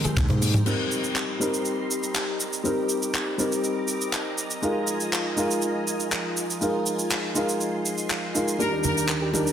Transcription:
Already playing: G#3 C4 G4 A#4 G5 A#5 C6
0.04 G#4, muted fingered electric bass stroke, closed hi-hat, high tom, shaker
0.16 D#2 A#3, kick, clap, closed hi-hat, mid tom, shaker
0.29 G#2 C5, closed hi-hat, mid tom, low conga
0.41 A#3, open hi-hat, shaker
0.54 G4, closed hi-hat, mid tom, muted conga, high conga, shaker
0.65 G3 C4 D#4 G4 A#4 D#5 A#5 C6, crash, shaker
0.91 shaker
1.04 shaker
1.16 clap, shaker
1.40 G3 C4 D#4 A#4, shaker
1.54 shaker
1.65 shaker
1.91 shaker
2.03 shaker
2.15 clap, shaker
2.40 shaker
2.53 shaker
2.63 G3 C4 D#4 A#4 D6, shaker
2.89 shaker
3.02 shaker
3.14 clap, shaker
3.38 G3 C4 D#4 A#4, shaker
3.52 shaker
3.64 shaker
3.88 shaker
4.01 shaker
4.13 clap, shaker
4.38 shaker
4.51 shaker
4.62 G#3 D#4 F4 A#4 G#5, shaker
4.87 shaker
5.00 shaker
5.13 clap, shaker
5.36 G#3 D#4 F4 A#4, shaker
5.51 shaker
5.62 shaker
5.88 shaker
6.00 shaker
6.12 clap, shaker
6.37 shaker
6.50 shaker
6.61 G#3 D#4 F4 A#4 C6, shaker
6.86 shaker
6.99 shaker
7.11 clap, shaker
7.35 G#3 D#4 F4 A#4, shaker
7.49 shaker
7.61 shaker
7.86 shaker
7.98 shaker
8.09 clap, shaker
8.34 G#3 D#4 F4 A#4, shaker
8.48 shaker
8.58 D#3 G3 A#3 D4 D#4 A#4 D5 G5 A#5, shaker
8.72 D4
8.84 D#4 A#4, muted conga, low conga, shaker
8.97 D#4, shaker
9.09 A#4, clap, shaker
9.22 G4
9.33 G3 D4 D#4 A#4, muted conga, shaker
9.47 D4, shaker

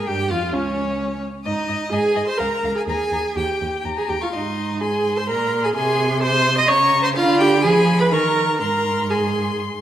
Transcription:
0.07 G2 G4 G5
0.30 F2 F4 F5
0.53 C#2 C#4 C#5
1.45 G#2 D#4 D#5
1.68 G#2 D#5
1.92 G#2 G#4 D#5 G#5
2.16 G#2 D#5
2.27 C5 C6
2.38 C#2 A#4 F5 A#5
2.64 C#2 F5
2.75 G#4 G#5
2.87 D#2 G#4 G#5 A#5
3.12 D#2 A#5
3.36 D#2 G4 G5
3.61 D#2
3.85 D#2 A#5
3.97 G#4 G#5
4.09 D#2 G4 G5
4.21 F4 F5 C#6
4.32 G#2 D#4 D#5 C6
4.80 G#4 G#5 C6
5.17 C5 C6
5.29 A#2 A#4 A#5
5.64 G#4 G#5
5.75 C3 G#4 G#5 C6
6.23 C5 C6
6.58 D#5 D#6
6.68 C#3 C#5 A#5 C#6
7.03 C5 C6
7.16 D3 F4 F5 B5
7.40 G4 G5
7.62 F3 G#4 G#5 B5
7.99 B4 B5
8.11 D#3 A#4 A#5 C#6
8.60 G#2 A#4 A#5 C6
9.10 G#4 G#5 C6

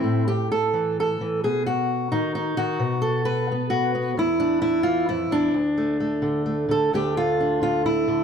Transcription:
Already playing: A3 C4 E4
0.04 A2
0.28 G4
0.52 A4
0.73 E3
1.00 A4
1.21 E3
1.44 B2 G#4
1.66 F#4
2.12 D#3 D#4
2.35 D#4
2.57 D#3 F#4
2.79 B2
3.02 A4
3.25 B4
3.51 B3
3.70 F#4
3.95 B3
4.17 E2 E4
4.40 D4
4.62 E4
4.83 E3 F4
5.09 F2 E4
5.31 E2 D4
5.54 D2
5.77 A3
6.00 A3
6.22 D3
6.46 A3
6.69 D3 A4
6.93 D2 D3 A3 D4 G4
7.17 F4
7.40 D4
7.62 D3 F4
7.86 E4
8.08 D3

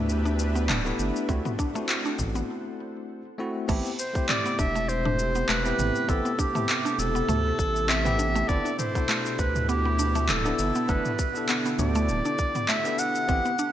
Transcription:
Already playing: D2 A3 B3 D4 E4 G4 B4 E5
0.09 shaker
0.25 D4, shaker
0.39 shaker
0.55 B3, shaker
0.69 D1 A3, clap, mid tom, shaker
0.85 A3 B3 D4 E4, shaker
0.99 G1, shaker
1.16 shaker
1.28 D2 A3 C4 E4 F#4 A4 C5 F#5, kick, shaker
1.45 B3, mid tom, shaker
1.59 D4, kick, shaker
1.74 A3 C4 E4 F#4, shaker
1.89 clap, shaker
2.05 D4, shaker
2.19 A1, kick, mid tom, shaker
2.35 B3, shaker
3.38 A3 C4 E4 F#4
3.68 A1 C3 A3 B3 C4 E4 G4, kick, crash, shaker
3.86 shaker
3.99 C5, shaker
4.13 A3 C4 E4 G4, kick, shaker
4.29 C4 D5, clap, mid tom, shaker
4.46 B3, shaker
4.59 E1 D4 E5, kick, shaker
4.75 A3, shaker
4.89 C5, shaker
5.05 D4, mid tom
5.19 shaker
5.35 B3, shaker
5.49 E1 A3 B4, clap, shaker
5.64 B3 C4 E4 G4, shaker
5.79 A1, mid tom, shaker
5.95 shaker
6.08 A1 B3 C4 E4 G4 A4, kick, shaker
6.25 B3, shaker
6.39 D4 G4, kick, shaker
6.53 A3 B3 C4 E4, mid tom, shaker
6.57 G4
6.69 clap, shaker
6.85 D4, shaker
6.99 E1 A4, shaker
7.15 B3, shaker
7.29 D2 A3, mid tom, shaker
7.59 A1, kick, shaker
7.76 shaker
7.89 C4 E5, clap, shaker
8.05 B3 C4 E4 G4, mid tom, shaker
8.19 D4, shaker
8.35 A3, shaker
8.48 G1 B2 D3 B3 D4 E4 G4 A4 D5, kick, shaker
8.65 D4, shaker
8.78 C5, mid tom, shaker
8.94 B2 B3 D4 E4 A4, kick, shaker
9.09 A3, clap, shaker
9.26 shaker
9.39 D2 B4, kick, shaker
9.56 mid tom, shaker
9.69 B3 G4, shaker
9.85 B3
9.99 D4, shaker
10.15 A3, shaker
10.29 D1 A4, clap, mid tom, shaker
10.45 B3 D4 E4 A4, shaker
10.59 G1, shaker
10.75 B3, shaker
10.88 G1 A3 B3 D4 E4 A4 B4, kick, shaker
11.05 mid tom, shaker
11.19 kick, shaker
11.33 B3 D4 E4 A4, shaker
11.49 B3, clap, shaker
11.66 B3, shaker
11.79 D2 D4 D5, mid tom, shaker
11.95 A3, shaker
12.09 D1, shaker
12.25 D4, shaker
12.39 kick, shaker
12.55 B3, mid tom, shaker
12.69 A3 E5, clap, shaker
12.84 B3 D4 E4 A4, shaker
12.99 F#5, shaker
13.15 shaker
13.28 A1 C3 A3 B3 C4 E4 G4, kick, shaker
13.45 B3, shaker
13.59 D4, shaker

